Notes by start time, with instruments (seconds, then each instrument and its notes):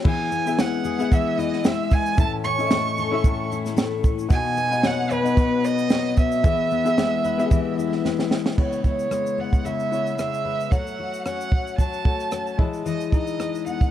Already playing: steel-string acoustic guitar F#3 C#4 F#4 A4
0.04 steel-string acoustic guitar E3, upright piano B3 E4 G#4 E5, violin G#5, kick, crash
0.31 steel-string acoustic guitar B3, shaker
0.46 upright piano B3 E4 G#4 E5, shaker
0.58 steel-string acoustic guitar G#3, violin F#5, snare, shaker
0.84 steel-string acoustic guitar G#4, shaker
0.98 upright piano B3 E4 G#4 E5, shaker
1.12 steel-string acoustic guitar E3, violin E5, kick, shaker
1.38 steel-string acoustic guitar E4, violin D#5, shaker
1.53 snare
1.64 steel-string acoustic guitar G#3, violin E5, snare, shaker
1.91 violin G#5, kick, shaker
2.06 shaker
2.17 steel-string acoustic guitar A2, upright piano C#4 E4 A4 E5, violin A5, kick, shaker
2.44 steel-string acoustic guitar C#4, violin C#6, shaker
2.58 upright piano C#4 E4 A4 D#5, shaker
2.67 upright piano E5, snare, shaker
2.72 steel-string acoustic guitar A3
2.97 steel-string acoustic guitar A4, shaker
3.11 upright piano C#4 E4 A4 E5
3.24 steel-string acoustic guitar A2, kick, shaker
3.52 steel-string acoustic guitar E4, shaker
3.66 snare, shaker
3.76 steel-string acoustic guitar A3, snare, shaker
4.04 kick, shaker
4.19 shaker
4.29 steel-string acoustic guitar B2, upright piano B3 D#4 F#4 D#5, violin G#5, kick, shaker
4.57 steel-string acoustic guitar B3, shaker
4.71 upright piano B3 D#4 F#4 D#5, shaker
4.83 steel-string acoustic guitar F#3, violin F#5, snare, shaker
5.10 steel-string acoustic guitar B4, violin B4, shaker
5.23 upright piano B3 D#4 F#4 D#5, shaker
5.37 steel-string acoustic guitar B2, kick, shaker
5.64 violin D#5, shaker
5.78 shaker
5.90 steel-string acoustic guitar F#3, snare, shaker
6.17 violin E5, kick, shaker
6.32 shaker
6.43 steel-string acoustic guitar E3, upright piano B3 E4 G#4 E5, kick, shaker
6.71 steel-string acoustic guitar B3, shaker
6.85 upright piano B3 E4 G#4 E5, shaker
6.97 steel-string acoustic guitar G#3, snare, shaker
7.24 steel-string acoustic guitar B4, shaker
7.38 upright piano B3 E4 G4 E5, shaker
7.46 upright piano G#4
7.51 steel-string acoustic guitar E3, kick, shaker
7.78 steel-string acoustic guitar E4, shaker
7.92 snare
8.05 steel-string acoustic guitar G#3, snare
8.19 snare
8.31 snare
8.46 snare
8.57 steel-string acoustic guitar C#3, upright piano B3 E4 C#5, violin C#5, kick, crash
8.72 shaker
8.84 steel-string acoustic guitar E4, violin C#5, kick, shaker
8.99 shaker
9.11 steel-string acoustic guitar G#3, cross-stick, shaker
9.26 shaker
9.38 steel-string acoustic guitar B3, violin F#5
9.53 kick, shaker
9.64 steel-string acoustic guitar C#3, violin E5, shaker
9.80 shaker
9.91 upright piano B3 E4 C#5, shaker
10.07 shaker
10.18 steel-string acoustic guitar G#3, violin E5, cross-stick, shaker
10.34 shaker
10.45 steel-string acoustic guitar B4
10.60 shaker
10.70 steel-string acoustic guitar F#3, upright piano A3 F#4 C#5, violin F#5, kick, shaker
10.87 shaker
10.99 steel-string acoustic guitar F#4
11.14 shaker
11.25 steel-string acoustic guitar C#4, violin F#5, cross-stick, shaker
11.41 shaker
11.52 steel-string acoustic guitar C#4, kick
11.67 shaker
11.78 steel-string acoustic guitar F#3, violin A5, kick, shaker
11.93 shaker
12.04 upright piano A3 F#4 C#5, kick
12.20 cross-stick, shaker
12.32 steel-string acoustic guitar C#4, cross-stick, shaker
12.47 shaker
12.58 steel-string acoustic guitar E3, upright piano G#3 E4 D#5, kick
12.73 shaker
12.86 steel-string acoustic guitar E3, violin D#5, shaker
13.00 shaker
13.12 steel-string acoustic guitar D#4, violin D#5, kick, shaker
13.27 shaker
13.39 steel-string acoustic guitar G#3, cross-stick, shaker
13.55 shaker
13.66 steel-string acoustic guitar B3, violin F#5, shaker
13.81 kick, shaker